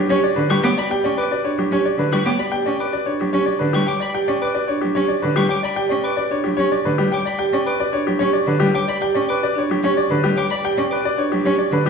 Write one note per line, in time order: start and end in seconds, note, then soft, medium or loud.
0.00 0.14 G4 medium
0.09 0.19 C#4 medium
0.09 0.27 G4 medium
0.09 0.27 C#5 medium
0.23 0.40 F#4 medium
0.23 0.41 D5 medium
0.36 0.46 D3 medium
0.36 0.54 B4 medium
0.49 0.60 G3 medium
0.49 0.68 G4 medium
0.49 0.60 C#6 medium
0.63 0.73 B3 medium
0.63 0.81 C#5 medium
0.63 0.81 G5 medium
0.63 0.74 D6 medium
0.77 0.94 F#4 medium
0.77 0.95 D5 medium
0.77 0.87 B5 medium
0.90 1.08 G4 medium
0.90 1.08 G5 medium
1.04 1.14 C#4 medium
1.04 1.22 D5 medium
1.17 1.35 B4 medium
1.17 1.28 D6 medium
1.31 1.49 F#4 medium
1.31 1.49 D5 medium
1.45 1.62 D4 medium
1.45 1.62 C#5 medium
1.58 1.68 F#3 medium
1.58 1.76 G4 medium
1.71 1.81 C#4 medium
1.71 1.89 G4 medium
1.71 1.89 C#5 medium
1.85 2.03 F#4 medium
1.85 2.03 D5 medium
1.98 2.08 D3 medium
1.98 2.16 B4 medium
2.12 2.22 G3 medium
2.12 2.30 G4 medium
2.12 2.22 C#6 medium
2.25 2.35 B3 medium
2.25 2.43 C#5 medium
2.25 2.43 G5 medium
2.25 2.36 D6 medium
2.39 2.57 F#4 medium
2.39 2.57 D5 medium
2.39 2.49 B5 medium
2.52 2.70 G4 medium
2.52 2.70 G5 medium
2.66 2.76 C#4 medium
2.66 2.84 D5 medium
2.80 2.97 B4 medium
2.80 2.90 D6 medium
2.93 3.11 F#4 medium
2.93 3.11 D5 medium
3.06 3.24 D4 medium
3.06 3.24 C#5 medium
3.20 3.30 F#3 medium
3.20 3.38 G4 medium
3.33 3.44 C#4 medium
3.33 3.51 G4 medium
3.33 3.51 C#5 medium
3.46 3.65 F#4 medium
3.46 3.64 D5 medium
3.59 3.71 D3 medium
3.59 3.78 B4 medium
3.73 3.84 G3 medium
3.73 3.91 G4 medium
3.73 3.85 C#6 medium
3.87 4.05 C#5 medium
3.87 4.05 G5 medium
3.87 3.98 D6 medium
4.00 4.18 D5 medium
4.00 4.11 B5 medium
4.14 4.32 G4 medium
4.14 4.32 G5 medium
4.28 4.38 C#4 medium
4.28 4.46 D5 medium
4.41 4.59 B4 medium
4.41 4.52 D6 medium
4.55 4.73 F#4 medium
4.55 4.73 D5 medium
4.68 4.86 D4 medium
4.68 4.86 C#5 medium
4.81 4.92 F#3 medium
4.81 5.00 G4 medium
4.95 5.06 C#4 medium
4.95 5.13 G4 medium
4.95 5.13 C#5 medium
5.08 5.27 F#4 medium
5.08 5.27 D5 medium
5.22 5.33 D3 medium
5.22 5.40 B4 medium
5.36 5.46 G3 medium
5.36 5.54 G4 medium
5.36 5.46 C#6 medium
5.49 5.67 C#5 medium
5.49 5.67 G5 medium
5.49 5.60 D6 medium
5.63 5.81 D5 medium
5.63 5.74 B5 medium
5.76 5.95 G4 medium
5.76 5.94 G5 medium
5.89 6.01 C#4 medium
5.89 6.08 D5 medium
6.04 6.21 B4 medium
6.04 6.22 B4 medium
6.04 6.14 D6 medium
6.17 6.35 F#4 medium
6.17 6.35 D5 medium
6.31 6.49 D4 medium
6.31 6.49 C#5 medium
6.44 6.55 F#3 medium
6.44 6.62 G4 medium
6.57 6.68 C#4 medium
6.57 6.76 G4 medium
6.57 6.75 C#5 medium
6.72 6.89 F#4 medium
6.72 6.89 D5 medium
6.85 6.95 D3 medium
6.85 7.03 B4 medium
6.98 7.09 G3 medium
6.98 7.16 G4 medium
7.12 7.30 C#5 medium
7.12 7.30 G5 medium
7.12 7.22 D6 medium
7.25 7.43 D5 medium
7.25 7.36 B5 medium
7.39 7.57 G4 medium
7.39 7.57 G5 medium
7.53 7.63 C#4 medium
7.53 7.70 D5 medium
7.66 7.84 B4 medium
7.66 7.76 D6 medium
7.80 7.97 F#4 medium
7.80 7.97 D5 medium
7.93 8.11 D4 medium
7.93 8.11 C#5 medium
8.07 8.17 F#3 medium
8.07 8.24 G4 medium
8.19 8.30 C#4 medium
8.19 8.38 G4 medium
8.19 8.37 C#5 medium
8.33 8.51 F#4 medium
8.33 8.51 D5 medium
8.47 8.57 D3 medium
8.47 8.65 B4 medium
8.60 8.70 G3 medium
8.60 8.78 G4 medium
8.75 8.92 C#5 medium
8.75 8.92 G5 medium
8.75 8.85 D6 medium
8.88 9.05 D5 medium
8.88 8.98 B5 medium
9.01 9.19 G4 medium
9.01 9.19 G5 medium
9.15 9.25 C#4 medium
9.15 9.32 D5 medium
9.29 9.46 B4 medium
9.29 9.39 D6 medium
9.42 9.59 F#4 medium
9.42 9.60 D5 medium
9.55 9.73 D4 medium
9.55 9.74 C#5 medium
9.69 9.79 F#3 medium
9.69 9.87 G4 medium
9.83 9.93 C#4 medium
9.83 10.00 G4 medium
9.83 10.01 C#5 medium
9.96 10.13 F#4 medium
9.96 10.14 D5 medium
10.10 10.20 D3 medium
10.10 10.27 B4 medium
10.24 10.34 G3 medium
10.24 10.41 G4 medium
10.36 10.54 C#5 medium
10.36 10.55 G5 medium
10.36 10.47 D6 medium
10.50 10.68 D5 medium
10.50 10.60 B5 medium
10.63 10.81 G4 medium
10.63 10.81 G5 medium
10.78 10.87 C#4 medium
10.78 10.95 D5 medium
10.90 11.08 B4 medium
10.90 11.09 B4 medium
10.90 11.01 D6 medium
11.04 11.22 F#4 medium
11.04 11.22 D5 medium
11.17 11.35 D4 medium
11.17 11.35 C#5 medium
11.32 11.42 F#3 medium
11.32 11.49 G4 medium
11.44 11.55 C#4 medium
11.44 11.62 G4 medium
11.44 11.62 C#5 medium
11.58 11.76 F#4 medium
11.58 11.76 D5 medium
11.72 11.82 D3 medium
11.72 11.89 B4 medium
11.72 11.90 B4 medium
11.85 11.90 G3 medium
11.85 11.90 G4 medium